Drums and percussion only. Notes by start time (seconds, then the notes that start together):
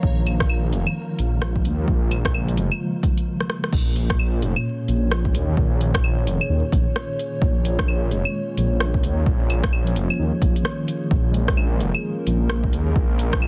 0.03 kick
0.26 closed hi-hat, claves
0.40 kick, cross-stick
0.49 claves
0.73 closed hi-hat
0.87 claves
1.19 closed hi-hat
1.42 cross-stick
1.56 kick
1.65 closed hi-hat
1.88 kick
2.11 closed hi-hat, claves
2.25 kick, cross-stick
2.34 claves
2.48 closed hi-hat
2.57 closed hi-hat
2.72 claves
3.03 kick, closed hi-hat
3.18 closed hi-hat
3.40 cross-stick
3.50 cross-stick
3.64 cross-stick
3.73 kick, crash
3.96 closed hi-hat
4.10 kick, cross-stick
4.19 claves
4.42 closed hi-hat
4.56 claves
4.88 closed hi-hat
5.12 cross-stick
5.25 kick
5.35 closed hi-hat
5.57 kick
5.81 closed hi-hat
5.94 kick, cross-stick
6.04 claves
6.27 closed hi-hat
6.41 claves
6.72 kick, closed hi-hat
6.96 cross-stick
7.19 closed hi-hat
7.42 kick
7.65 closed hi-hat
7.79 kick, cross-stick
7.88 claves
8.11 closed hi-hat
8.25 claves
8.57 closed hi-hat
8.80 cross-stick
8.94 kick
9.03 closed hi-hat
9.26 kick
9.50 closed hi-hat, claves
9.63 kick, cross-stick
9.73 claves
9.87 closed hi-hat
9.96 closed hi-hat
10.10 claves
10.42 kick, closed hi-hat
10.56 closed hi-hat
10.65 cross-stick
10.88 closed hi-hat
11.11 kick
11.34 closed hi-hat
11.48 kick, cross-stick
11.57 claves
11.80 closed hi-hat
11.95 claves
12.27 closed hi-hat
12.50 cross-stick
12.64 kick
12.73 closed hi-hat
12.96 kick
13.19 closed hi-hat
13.33 kick, cross-stick
13.42 claves